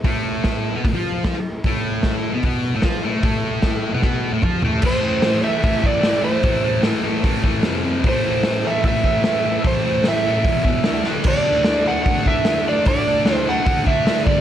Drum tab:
CC |--------|--------|--------|x-------|
HH |o-o-o-o-|o-o-o-o-|o-o-----|--o-o-o-|
SD |--o---o-|--o---o-|--o-o---|--o---o-|
T2 |--------|--------|------o-|--------|
FT |--------|--------|-------o|--------|
BD |o-o-o-o-|o-o-o-o-|o-o-o-o-|o---oo--|

CC |--------|--------|--------|x-------|
HH |o-o-o-o-|o-o-o-o-|o-o-o-o-|--o-o-o-|
SD |--o---o-|--o---o-|--o---oo|--o---o-|
T2 |--------|--------|--------|--------|
FT |--------|--------|--------|--------|
BD |o---oo--|o---oo--|o---oo--|o---oo--|

CC |--------|
HH |o-o-o-o-|
SD |--o---o-|
T2 |--------|
FT |--------|
BD |o---oo-o|